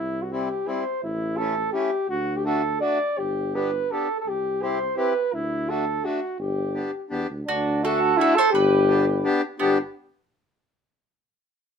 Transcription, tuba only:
Already playing: C2
1.03 A1
2.09 D2
3.18 G1
4.26 C2
5.33 D2
6.39 G1
7.11 E2
7.30 D2
7.48 D2
8.54 G1
9.61 G1

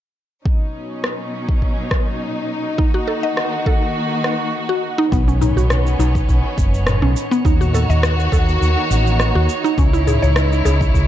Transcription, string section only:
0.45 B2 F#3 C#4 D#4
2.78 D#3 A#3 F#4
5.12 D#3 B3 C#4
7.45 D#3 A#3 D#4 F#4
9.77 C#3 G#3 E4

